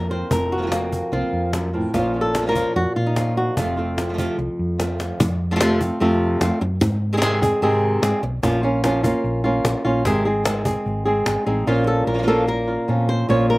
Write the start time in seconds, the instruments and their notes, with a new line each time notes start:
Already playing: fingered electric bass F2, nylon-string guitar F2 A#3 A#4
0.10 nylon-string guitar A#3 C4 F4 C5
0.31 fingered electric bass F1, nylon-string guitar F2 A#4, muted nylon-string guitar stroke, cajon bass
0.52 nylon-string guitar F#4
0.58 nylon-string guitar F3 A#3 C4 F4
0.62 nylon-string guitar F3 A#3 C4 F4
0.67 nylon-string guitar F3 A#3 C4 F4
0.72 nylon-string guitar A#3 C4, cajon slap
0.92 cajon bass
1.12 fingered electric bass C2, nylon-string guitar F3 A#3 C4 F4
1.33 fingered electric bass F2
1.53 nylon-string guitar F#2, muted nylon-string guitar stroke, cajon slap
1.73 nylon-string guitar A2 A#3 C4 F4
1.94 fingered electric bass A#1, nylon-string guitar A#2 F3 A#3 C#4 F4, cajon bass, cajon slap
2.14 nylon-string guitar A#3 C#4 F4
2.21 nylon-string guitar A4
2.34 nylon-string guitar F3 A#3 C#4 F4, cajon slap
2.42 nylon-string guitar F3 A#3 C#4 F4
2.46 nylon-string guitar F3 A#3 C#4 F4 A#4
2.51 nylon-string guitar F3 A#3 C#4 F4
2.55 nylon-string guitar F3 A#3 C#4 F4, cajon bass
2.76 fingered electric bass F2, nylon-string guitar F#4, muted nylon-string guitar stroke
2.96 fingered electric bass A#2, nylon-string guitar F4
3.06 nylon-string guitar D#4
3.16 nylon-string guitar F3 A#3 C#4 F4, cajon slap
3.37 nylon-string guitar F#4
3.57 fingered electric bass F1, nylon-string guitar F2 C3 F3 A3 C4 F4, cajon bass
3.77 nylon-string guitar A3 C4 F4
3.97 nylon-string guitar F3 A3 C4 F4, cajon slap
4.09 nylon-string guitar F3 A3 C4 F4
4.14 nylon-string guitar F3 A3 C4 F4
4.18 nylon-string guitar C3 F3 A3 C4 F4, cajon bass
4.38 fingered electric bass C2, muted nylon-string guitar stroke
4.59 fingered electric bass F2
4.78 nylon-string guitar F3 A3 C4 F4, cajon slap
5.00 cajon slap
5.20 fingered electric bass F2, muted nylon-string guitar stroke, cajon bass
5.51 nylon-string guitar F3 A3 C4 F4
5.56 nylon-string guitar F3 A3 C4 F4
5.60 nylon-string guitar C3 F3 A3 C4 F4, cajon slap
5.80 nylon-string guitar A3 C4 F4, cajon bass
6.00 fingered electric bass F2, nylon-string guitar C3 F3 A3 C4 F4
6.41 fingered electric bass F2, nylon-string guitar A3 C4 F4, cajon slap
6.61 fingered electric bass F#2, muted nylon-string guitar stroke
6.81 fingered electric bass G#2, muted nylon-string guitar stroke, cajon bass, cajon slap
7.13 nylon-string guitar D#3 G#3 C4 G#4
7.17 nylon-string guitar D#3 G#3 C4 G#4
7.22 nylon-string guitar C3 D#3 G#3 C4 G#4, cajon slap
7.42 nylon-string guitar G#3 C4 G#4, cajon bass
7.62 fingered electric bass G#2, nylon-string guitar C3 D#3 G#3 C4 G#4
8.02 fingered electric bass G#2, nylon-string guitar G#3 C4 G#4, cajon slap
8.23 fingered electric bass B1, muted nylon-string guitar stroke, cajon slap
8.43 fingered electric bass A#1, nylon-string guitar F3 A#3 C#4 F4, cajon bass, cajon slap
8.63 nylon-string guitar A#3 C#4 F4
8.84 nylon-string guitar F3 A#3 C#4 F4, cajon slap
9.03 nylon-string guitar A#3 C#4 F4, cajon bass
9.24 fingered electric bass A#1, cajon slap
9.44 nylon-string guitar A#3 C#4 F4
9.65 fingered electric bass A#1, cajon slap
9.85 fingered electric bass A#1, nylon-string guitar A#3 C#4 F4
10.05 fingered electric bass G#1, nylon-string guitar C3 D#3 G#3 C4 G#4, cajon bass, cajon slap
10.25 nylon-string guitar G#3 C4 G#4
10.45 nylon-string guitar D#3 G#3 C4 G#4, cajon slap
10.65 nylon-string guitar G#3 C4 G#4, cajon bass
10.86 fingered electric bass G#1, cajon slap
11.05 nylon-string guitar G#3 C4 G#4
11.26 fingered electric bass G#1, cajon slap
11.46 fingered electric bass A1, nylon-string guitar G#3 C4 D#4 G#4, cajon slap
11.67 fingered electric bass A#1, nylon-string guitar A#2 F3 A#3 C#4 F4
11.87 nylon-string guitar A4
12.07 fingered electric bass A#1, nylon-string guitar A#3 C#4 F4 A#4
12.14 nylon-string guitar F3 A#3 C#4 F4
12.18 nylon-string guitar F3 A#3 C#4 F4
12.23 nylon-string guitar F3 A#3 C#4 F4
12.27 nylon-string guitar F3 A#3 C#4 F4 A4
12.47 nylon-string guitar A#4, muted nylon-string guitar stroke
12.68 nylon-string guitar A#3 C#4 F4
12.88 nylon-string guitar F2 F3 A#3 C#4 F4, fingered electric bass A#2
13.09 nylon-string guitar C5
13.29 fingered electric bass A#1, nylon-string guitar A#2 F3 A#3 C#4 F4 C#5
13.50 nylon-string guitar A#4